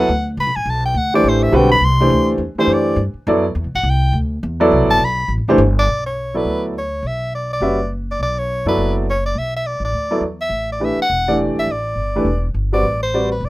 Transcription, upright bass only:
0.09 D2
0.37 C#2
0.46 B1
0.56 A1
0.66 B1
0.94 D2
1.24 A1
1.52 B1
1.80 C2
2.10 D2
2.38 E2
2.55 muted upright bass stroke
2.67 F#2
2.96 G2
3.14 muted upright bass stroke
3.27 F#2
3.55 E2
3.64 C2
3.75 A1
3.83 C2
4.13 D2
4.43 E2
4.72 C2
4.82 A1
4.91 G1
4.99 B1
5.28 A1
5.38 G1
5.48 E1
5.58 G1
5.87 B1
6.45 D2
7.03 B1
7.60 F#1
8.19 B1
8.65 F#2
8.78 F#1
9.35 B1
9.80 A1
9.92 D2
10.21 E2
10.50 A1
10.97 muted upright bass stroke
11.10 E1
11.55 G#1
11.67 A1
11.95 G1
12.25 E1
12.54 G1
12.83 A1
13.40 E1

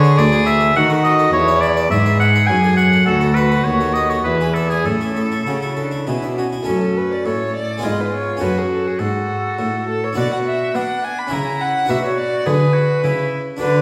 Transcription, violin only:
Already playing: G#4
0.76 F#4
1.34 E4
1.91 G#4
3.07 F#4
4.25 E4
4.86 C#4
5.46 C#4
5.77 D4
6.07 E4
6.37 F#4
6.68 A4
6.97 B4
7.11 D5
7.25 C#5
7.56 D5
7.84 D#5
8.00 B4
8.14 C#5
8.42 B4
8.58 G#4
8.71 A4
8.87 G#4
9.01 F#4
9.88 A4
10.03 C#5
10.17 D5
10.32 F#5
10.47 E5
10.76 F#5
11.04 G#5
11.18 B5
11.33 A#5
11.61 F#5
11.90 E5
12.05 C#5
12.18 D5
12.46 B4
13.60 B4

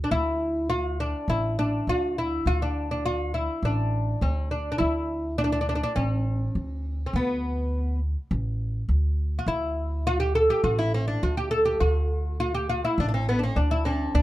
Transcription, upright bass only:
0.11 D2
1.28 A1
1.87 D2
2.46 D2
3.63 A1
4.21 D2
4.80 D2
5.97 A1
6.55 D2
7.13 D2
8.31 A1
8.89 D2
9.46 D2
10.64 A1
11.23 D2
11.81 D2
12.98 A1
13.56 D2
14.14 D2

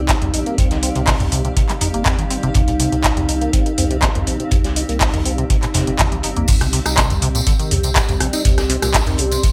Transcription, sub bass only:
Already playing: C2
0.22 C2
0.34 A#1
0.58 C2
0.95 C2
1.81 G1
1.94 G1
2.06 G1
2.43 G1
2.55 C2
2.92 C2
3.53 G1
3.78 C2
4.15 C2
4.27 A#1
4.52 C2
4.89 C2
5.75 G1
5.87 G1
6.12 C2
6.24 G1
6.37 A#1
6.48 C2
6.86 C2
7.47 G1
7.71 C2
8.09 C2
8.21 A#1
8.45 C2
8.82 C2

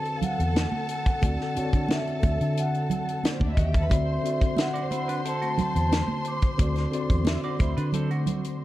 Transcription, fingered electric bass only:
0.22 muted fingered electric bass stroke
0.39 E2
1.23 D2
1.57 muted fingered electric bass stroke
1.74 D3
2.24 D2
2.41 D3
3.41 D2
3.57 D#2
3.92 D2
5.59 muted fingered electric bass stroke
5.76 E2
6.60 D2
7.10 E2
7.60 D2
7.77 D3

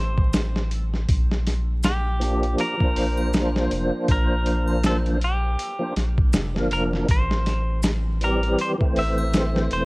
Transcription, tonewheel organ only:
2.20 F3 A#3 D4 G4
2.77 F3 A#3
2.82 D4 C5
5.79 F3 A#3 D4 C5
6.54 F3 A#3 D4 A#4
8.20 E3 G3 C4 G4
8.78 E3 A3
8.82 C4 C5

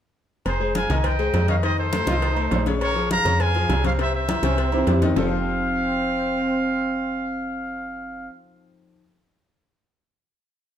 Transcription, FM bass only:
0.46 F1
0.90 C2
1.34 F2
2.07 C2
2.52 A#1
3.25 F2
3.69 C2
4.43 C2
4.87 F2
5.16 F1

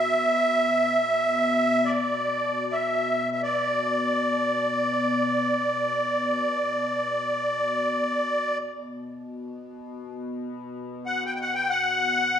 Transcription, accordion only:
Already playing: E5
1.85 D5
2.72 E5
3.32 E5
3.43 D5
11.06 F#5
11.26 G5
11.35 G5
11.41 F#5
11.54 G5
11.70 F#5

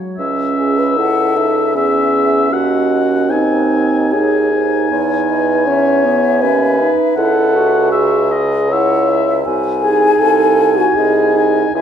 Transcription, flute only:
0.98 F#5
1.37 E5
2.52 D#5
3.30 C5
4.11 C#5
4.52 C5
4.91 C#5
5.29 D#5
5.67 E5
8.71 F#5
9.09 E5
9.45 G#5
10.97 D#5
11.75 E5

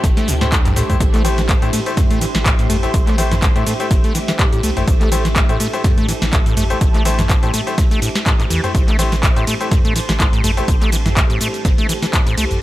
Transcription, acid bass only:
0.04 A2
0.17 A3
0.28 A2
0.41 A2
0.52 G2
0.65 G2
0.76 A2
0.90 A2
1.00 A2
1.14 A3
1.25 E3
1.38 E3
1.49 A2
1.62 A2
1.73 A3
1.97 A2
2.11 A3
2.21 E3
2.35 E3
2.46 A2
2.59 A2
2.70 A3
2.94 A2
3.07 A3
3.18 E3
3.32 E3
3.42 A2
3.56 A2
3.67 A3
3.91 A2
4.04 A3
4.15 E3
4.28 E3
4.39 A2
4.53 A2
4.63 A3
4.88 A2
5.01 A3
5.12 E3
5.25 E3
5.36 A2
5.49 A2
5.60 A3
5.84 A2
5.98 A3
6.09 E3
6.22 E3
6.33 A2
6.46 A2
6.57 A3
6.81 A2
6.95 A3
7.05 E3
7.19 E3
7.30 A2
7.43 A2
7.54 A3
7.78 A2
7.91 A3
8.02 A2
8.26 A2
8.40 A2
8.50 E3
8.75 A2
8.88 A3
8.99 E3
9.12 E3
9.23 A2
9.36 A2
9.47 A3
9.71 A2
9.85 A3
9.96 E3
10.09 E3
10.20 A2
10.33 A2
10.44 A3
10.68 A2
10.81 A3
10.92 E3
11.06 E3
11.17 A2
11.30 A2
11.41 A3
11.65 A2
11.78 A3
11.89 E3
12.02 E3
12.13 A2
12.27 A2
12.38 A3

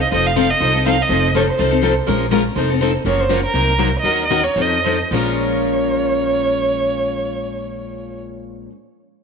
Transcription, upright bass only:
0.12 F1
0.60 C2
1.09 F1
1.59 C2
2.08 A#1
2.56 F1
3.05 F#1
3.54 C2
4.03 D#2
4.56 F2
5.11 A#1

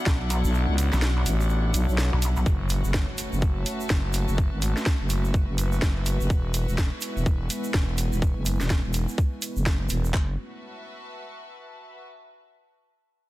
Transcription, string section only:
Already playing: D4 E4 A4 F#5
2.46 F#4
2.77 B4
2.93 A5
3.40 E5
6.99 G#5
10.14 F#4
10.23 B4
10.30 E5
10.35 A5

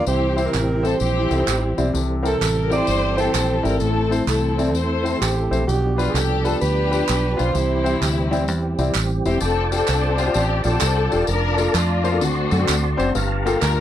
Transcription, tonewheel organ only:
0.08 E3 G3 C4 G4
1.95 A4
3.81 A3
5.68 F3 B3 D4 G4
7.54 E3 G3 C4 G4
9.40 F4 D5 G5 A5
11.27 A#5
12.21 F#4 A5 C6
13.15 G4 F5 A5 A#5

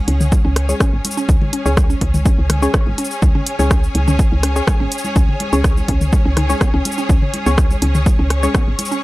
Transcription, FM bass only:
0.08 C#2
0.45 C#2
0.93 G#1
1.29 C#2
1.66 C#2
2.01 C#2
2.38 C#2
2.87 G#1
3.22 C#2
3.59 C#2
3.95 C#2
4.32 C#2
4.80 G#1
5.16 C#2
5.53 C#2
5.88 C#2
6.25 C#2
6.74 C#2
7.09 C#2
7.46 C#2
7.82 C#2
8.19 C#2
8.67 G#1

